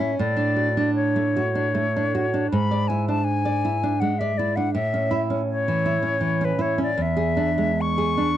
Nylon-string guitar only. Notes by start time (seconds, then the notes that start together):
Already playing: A2 E4
0.00 C#4
0.19 A2
0.37 D4
0.56 F#4
0.77 D4
1.16 A3
1.36 F#4
1.55 D4
1.75 A3
1.96 D4
2.15 F#4
2.34 D4
2.52 G#2
2.71 D5
2.90 E4
3.08 D4
3.45 D5
3.65 E4
3.83 D4
4.02 G#3
4.21 D5
4.39 E4
4.57 D4
4.75 A2
4.94 C#4
5.11 E4
5.30 C#4
5.68 E3
5.86 E4
6.03 C#4
6.21 E3
6.41 C#4
6.59 E4
6.78 C#4
6.98 E2
7.17 G#4
7.37 D4
7.58 G#3
7.98 G#4
8.17 D4